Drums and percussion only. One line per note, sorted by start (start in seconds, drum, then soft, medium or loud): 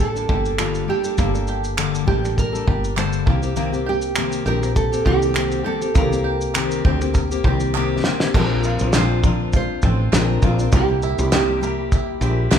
0.16 shaker medium
0.29 kick medium
0.45 shaker soft
0.58 finger snap loud
0.58 clap medium
0.58 shaker medium
0.75 shaker soft
1.04 shaker medium
1.18 kick medium
1.18 shaker medium
1.35 shaker soft
1.47 shaker medium
1.64 shaker medium
1.78 finger snap loud
1.78 clap medium
1.78 shaker medium
1.95 shaker medium
2.08 kick medium
2.25 finger snap soft
2.25 shaker soft
2.38 kick medium
2.38 shaker medium
2.55 shaker medium
2.68 kick medium
2.84 shaker soft
2.97 finger snap loud
2.97 clap medium
2.97 shaker medium
3.13 shaker soft
3.27 kick loud
3.43 shaker medium
3.56 shaker medium
3.74 shaker soft
4.02 shaker medium
4.15 finger snap loud
4.15 clap medium
4.15 shaker medium
4.32 shaker medium
4.46 shaker soft
4.63 finger snap soft
4.63 shaker soft
4.76 kick medium
4.76 shaker medium
4.93 shaker medium
5.06 kick medium
5.22 shaker soft
5.35 finger snap loud
5.35 clap medium
5.35 shaker medium
5.52 shaker soft
5.82 shaker medium
5.95 kick loud
5.95 shaker medium
6.13 shaker soft
6.41 shaker medium
6.55 finger snap loud
6.55 clap medium
6.55 shaker medium
6.71 shaker medium
6.85 kick medium
7.01 finger snap soft
7.01 shaker soft
7.14 kick medium
7.14 shaker medium
7.32 shaker medium
7.44 kick loud
7.60 shaker medium
7.75 clap medium
8.04 snare medium
8.20 snare medium
8.34 kick medium
8.34 crash loud
8.64 shaker medium
8.79 shaker medium
8.93 snare loud
8.93 clap medium
8.93 shaker medium
9.24 kick loud
9.24 shaker soft
9.53 kick medium
9.53 shaker medium
9.82 kick medium
9.82 shaker medium
10.13 snare loud
10.13 clap medium
10.13 shaker medium
10.42 kick medium
10.42 shaker soft
10.59 shaker medium
10.72 kick loud
10.72 shaker medium
11.02 shaker soft
11.19 shaker medium
11.32 snare loud
11.32 clap medium
11.32 shaker medium
11.63 shaker soft
11.92 kick medium
11.92 shaker medium
12.22 shaker medium
12.51 snare loud
12.51 clap medium
12.51 shaker medium